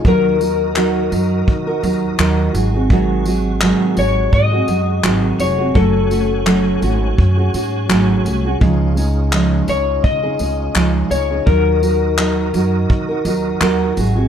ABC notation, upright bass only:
X:1
M:4/4
L:1/8
Q:"Swing 16ths" 1/4=84
K:Ebdor
V:1 name="Upright bass" clef=bass
E,,3 G,, E, E,, E,, A,,,- | A,,,3 A,,, A,, G,, A,,, F,,, | G,,,3 A,,, G,, A,, A,,, C,, | D,,3 D,, D, D,, D,, D,, |
E,,3 G,, E, E,, E,, A,,, |]